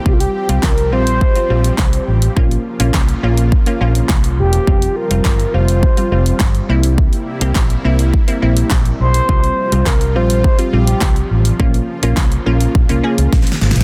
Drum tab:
HH |---x-----x-----x-----x-----x-----x-----x-----x--|---x-----x-----x-----x-----x-----x-----x-----x--|---x-----x-----x-----x-----x-----x-----x-----x--|---x-----x-----x-----x-----x-----x-----x-----x--|
CP |------------x-----------------------x-----------|------------x-----------------------x-----------|------------x-----------------------x-----------|------------x-----------------------x-----------|
SD |------------o-----------------------o-----------|------------o-----------------------o-----------|------------o-----------------------o-----------|------------o-----------------------o-----------|
BD |o-----------o-----------o-----------o-----------|o-----------o-----------o-----------o-----------|o-----------o-----------o-----------o-----------|o-----------o-----------o-----------o-----------|

HH |---x-----x-----x-----x-----x-----x-----x-----x--|---x-----x-----x-----x-----x-----x-----x-----x--|
CP |------------x-----------------------x-----------|------------x-----------------------------------|
SD |------------o-----------------------o-----------|------------o-----------------------o-o-o-o-o-o-|
BD |o-----------o-----------o-----------o-----------|o-----------o-----------o-----------o-----------|